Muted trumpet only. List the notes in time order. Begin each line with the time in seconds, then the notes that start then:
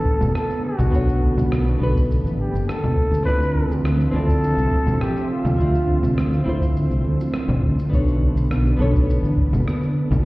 Already playing: A4
0.35 A4
0.64 F#4
2.40 G4
2.68 A4
3.25 B4
4.13 A4
5.01 G4
5.31 F4